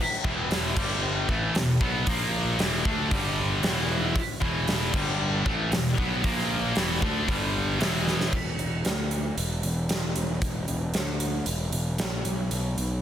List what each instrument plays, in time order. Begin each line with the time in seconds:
0.13 snare
0.24 picked electric bass E1, distorted electric guitar E2 B2 E3, kick
0.51 snare, open hi-hat
0.77 picked electric bass G1, distorted electric guitar G2 D3 G3, kick, crash
1.28 picked electric bass A1, distorted electric guitar A2 E3 A3, kick
1.54 picked electric bass E1, distorted electric guitar E2 B2, snare, open hi-hat
1.80 picked electric bass B1, distorted electric guitar B2 F#3 B3, kick
2.07 picked electric bass A#1, distorted electric guitar A#2 F3 A#3, kick, open hi-hat
2.58 picked electric bass E1, distorted electric guitar E2 B2 E3, snare, open hi-hat
2.85 picked electric bass D2, distorted electric guitar D3 A3 D4, kick
3.11 picked electric bass G1, distorted electric guitar G2 D3 G3, kick, open hi-hat
3.63 picked electric bass E1, distorted electric guitar E2 B2 E3, snare, open hi-hat
4.16 kick, open hi-hat
4.41 picked electric bass E1, distorted electric guitar E2 B2 E3, kick
4.68 snare, open hi-hat
4.93 picked electric bass G1, distorted electric guitar G2 D3 G3, kick, crash
5.45 picked electric bass A1, distorted electric guitar A2 E3 A3, kick
5.72 picked electric bass E1, distorted electric guitar E2 B2, snare, open hi-hat
5.98 picked electric bass B1, distorted electric guitar B2 F#3 B3, kick
6.23 picked electric bass A#1, distorted electric guitar A#2 F3 A#3, kick, open hi-hat
6.39 snare
6.75 picked electric bass E1, distorted electric guitar E2 B2 E3, snare, open hi-hat
7.02 picked electric bass D2, distorted electric guitar D3 A3 D4, kick
7.27 picked electric bass G1, distorted electric guitar G2 D3 G3, kick, open hi-hat
7.79 picked electric bass E1, distorted electric guitar E2 B2 E3, snare, open hi-hat
8.07 snare
8.21 snare
8.33 picked electric bass E1, kick, crash
8.59 picked electric bass E1, closed hi-hat
8.85 picked electric bass D2, snare, closed hi-hat
9.11 closed hi-hat
9.37 picked electric bass E1, closed hi-hat
9.63 picked electric bass E1, closed hi-hat
9.89 picked electric bass E1, snare, closed hi-hat
10.16 picked electric bass E1, closed hi-hat
10.42 picked electric bass E1, kick, closed hi-hat
10.68 picked electric bass E1, closed hi-hat
10.94 picked electric bass D2, snare, closed hi-hat
11.20 closed hi-hat
11.46 picked electric bass E1, closed hi-hat
11.72 picked electric bass E1, closed hi-hat
11.98 picked electric bass A#1, snare, closed hi-hat
12.25 picked electric bass B1, closed hi-hat
12.51 picked electric bass B1, closed hi-hat
12.77 picked electric bass B1, closed hi-hat